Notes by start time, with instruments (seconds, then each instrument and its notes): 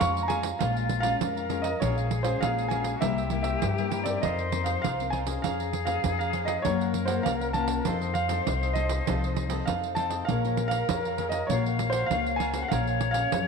Already playing: nylon-string guitar G#3 C#4 F4
0.00 upright bass F2, nylon-string guitar F2, cavaquinho G#4 C#5 F5 A#5, grand piano F5 C#6, pandeiro
0.17 pandeiro
0.23 grand piano A#5
0.28 nylon-string guitar G#3 C#4 F4, cavaquinho G#4 C#5 F5 A#5, grand piano G#5, pandeiro
0.42 cavaquinho C#5 A#5, pandeiro
0.59 upright bass A#1, nylon-string guitar A#2 G#3 C#4 F4, flute F4, cavaquinho G#4 C#5 F5 A#5, grand piano F5, pandeiro
0.76 cavaquinho C#5 F5 A#5, pandeiro
0.89 muted cavaquinho stroke, pandeiro
1.00 nylon-string guitar G#3 C#4, grand piano F5, cavaquinho F5 A#5, pandeiro
1.05 nylon-string guitar F4, cavaquinho C#5
1.21 upright bass F2, nylon-string guitar F2, flute A#4, pandeiro
1.37 cavaquinho C#5 F5 A#5, pandeiro
1.49 nylon-string guitar G#3 C#4 F4, cavaquinho G#4 C#5 F5 A#5, pandeiro
1.62 cavaquinho C#5 F5 A#5, grand piano D#5, pandeiro
1.80 upright bass A#1, nylon-string guitar A#2 G#3 C#4 F4, cavaquinho F#4 A#4 C#5 F5, flute G#4, grand piano C#5, pandeiro
1.97 cavaquinho A#4 C#5 F5, pandeiro
2.10 muted cavaquinho stroke, pandeiro
2.23 nylon-string guitar G#3 C#4 F4, cavaquinho A#4 C#5 F5, grand piano C5, pandeiro
2.41 upright bass A#1, nylon-string guitar A#2, cavaquinho F#4 A#4 C#5 F5, grand piano F5, pandeiro
2.58 pandeiro
2.68 nylon-string guitar G#3 C#4 F4, cavaquinho F#4 A#4 C#5, grand piano G#5, pandeiro
2.73 cavaquinho F5
2.84 cavaquinho A#4 C#5 F5, pandeiro
2.96 flute F#4
3.01 upright bass C2, nylon-string guitar C3 G3 A#3 E4, cavaquinho E4 A#4 C5 E5, flute G4, grand piano E5, pandeiro
3.18 cavaquinho A#4 C5 E5, pandeiro
3.30 nylon-string guitar G3 A#3 E4, muted cavaquinho stroke, pandeiro
3.43 cavaquinho C5 E5, grand piano E5, pandeiro
3.47 cavaquinho A#4
3.62 nylon-string guitar G2, upright bass G2, pandeiro
3.78 nylon-string guitar G3 A#3 E4, cavaquinho A#4 C5 E5, pandeiro
3.90 cavaquinho E4 A#4 C5 E5, pandeiro
4.04 nylon-string guitar C4 D#4 A#4, cavaquinho A#4 C5 E5, grand piano D5, pandeiro
4.21 upright bass F2, nylon-string guitar F3, cavaquinho F4 A#4 C5 D#5, flute C5, grand piano D#5, pandeiro
4.39 cavaquinho A#4 C5 D#5, pandeiro
4.52 nylon-string guitar C4 D#4 A#4, muted cavaquinho stroke, pandeiro
4.64 cavaquinho A#4 C5 D#5, grand piano F5, pandeiro
4.82 upright bass C2, nylon-string guitar C3, cavaquinho F4 A#4 C5, grand piano F5, pandeiro
4.86 cavaquinho D#5
5.00 nylon-string guitar C4 D#4 A#4, pandeiro
5.10 cavaquinho F4 A#4 C5 D#5, grand piano G#5, pandeiro
5.27 nylon-string guitar C#4 G#4 C5, cavaquinho A#4 C5 D#5, pandeiro
5.42 upright bass F2, nylon-string guitar F3, cavaquinho G#4 C#5 F5 A#5, flute G#4, grand piano F5, pandeiro
5.60 cavaquinho C#5 F5 A#5, pandeiro
5.73 muted cavaquinho stroke, pandeiro
5.85 nylon-string guitar C#4 G#4 C5, cavaquinho C#5 F5 A#5, grand piano F5, pandeiro
6.04 upright bass F2, nylon-string guitar F3, pandeiro
6.19 grand piano F5, cavaquinho F5 A#5, pandeiro
6.23 cavaquinho C#5
6.33 nylon-string guitar C#4 G#4 C5, cavaquinho G#4 C#5 F5 A#5, pandeiro
6.45 cavaquinho C#5 F5 A#5, grand piano D#5, pandeiro
6.59 flute C5, grand piano C#5
6.65 upright bass F#2, nylon-string guitar F#3 A#3 C#4 F4, cavaquinho F4 A#4 C#5 F#5, flute A#4, pandeiro
6.80 cavaquinho A#4 C#5 F#5, pandeiro
6.93 muted cavaquinho stroke, pandeiro
7.06 nylon-string guitar A#3 C#4 F4, grand piano C5, cavaquinho C#5 F#5, pandeiro
7.10 cavaquinho A#4
7.23 upright bass C2, cavaquinho F4 A#4 C#5, grand piano F5, pandeiro
7.28 cavaquinho F#5
7.41 pandeiro
7.53 nylon-string guitar A#3 C#4 F4, cavaquinho F4 A#4 C#5 F#5, grand piano A5, pandeiro
7.67 cavaquinho A#4 C#5 F#5, pandeiro
7.85 upright bass F2, nylon-string guitar F3 C4 D#4 A4, cavaquinho F4 A4 C5 D#5, flute C5, pandeiro
8.01 cavaquinho A4 C5 D#5, pandeiro
8.14 grand piano F5, muted cavaquinho stroke, pandeiro
8.28 nylon-string guitar C4 D#4 A4, cavaquinho A4 C5 D#5, pandeiro
8.47 upright bass C2, nylon-string guitar C3, pandeiro
8.63 cavaquinho A4 C5 D#5, pandeiro
8.73 nylon-string guitar C4 D#4, cavaquinho F4 A4 C5 D#5, grand piano D#5, pandeiro
8.78 nylon-string guitar A4
8.88 cavaquinho A4 C5 D#5, pandeiro
9.07 upright bass C2, nylon-string guitar F3 C4 D#4 A4, cavaquinho F4 A4 C5 D#5, pandeiro
9.24 cavaquinho A4 C5 D#5, pandeiro
9.36 muted cavaquinho stroke, pandeiro
9.50 nylon-string guitar C4 D#4 A4, cavaquinho A4 C5 D#5, pandeiro
9.66 upright bass F2, cavaquinho F4 A4 C5, grand piano F5, pandeiro
9.70 nylon-string guitar C3, cavaquinho D#5
9.84 pandeiro
9.95 nylon-string guitar C4 D#4, cavaquinho F4 A4 C5 D#5, grand piano A5, pandeiro
9.99 nylon-string guitar A4
10.10 cavaquinho A4 C5 D#5, pandeiro
10.25 upright bass A#1, cavaquinho G#4, flute A#4, grand piano F5, pandeiro
10.29 nylon-string guitar A#3 F4 G#4 C#5, cavaquinho C#5 F5 A#5
10.45 nylon-string guitar F4 G#4 C#5, cavaquinho C#5 F5 A#5, pandeiro
10.57 muted cavaquinho stroke, pandeiro
10.68 grand piano F5, cavaquinho A#5, pandeiro
10.73 cavaquinho C#5 F5
10.89 upright bass F2, nylon-string guitar F3 F4 G#4 C#5, pandeiro
11.05 cavaquinho C#5 F5 A#5, pandeiro
11.18 nylon-string guitar F4 G#4 C#5, cavaquinho G#4 C#5 F5 A#5, pandeiro
11.29 grand piano D#5, cavaquinho F5 A#5, pandeiro
11.34 cavaquinho C#5
11.47 upright bass A#1, nylon-string guitar A#3, cavaquinho F4, grand piano C#5, flute F5, pandeiro
11.51 nylon-string guitar F4 F#4 C#5, cavaquinho A#4 C#5 F#5
11.66 cavaquinho A#4 C#5 F#5, pandeiro
11.79 nylon-string guitar F4 F#4 C#5, muted cavaquinho stroke, pandeiro
11.90 grand piano C5, pandeiro
11.94 cavaquinho A#4 C#5 F#5
12.06 upright bass C#2, grand piano F5
12.11 nylon-string guitar A#3 F4 F#4 C#5, cavaquinho F4 A#4 C#5 F#5, pandeiro
12.26 pandeiro
12.36 cavaquinho F4, grand piano G#5, pandeiro
12.41 cavaquinho A#4 C#5 F#5
12.54 nylon-string guitar C#4 G#4 C5, cavaquinho A#4 C#5 F#5, pandeiro
12.63 grand piano F#5
12.68 upright bass A#1, nylon-string guitar A#3, cavaquinho A#4, flute C#5, grand piano F5, pandeiro
12.73 cavaquinho C#5 F5 G#5
12.87 cavaquinho C#5 F5 G#5, pandeiro
13.01 muted cavaquinho stroke, pandeiro
13.11 nylon-string guitar C#4, grand piano F5, cavaquinho F5 G#5, pandeiro
13.15 nylon-string guitar G#4, cavaquinho C#5
13.32 upright bass F#2, nylon-string guitar F3, pandeiro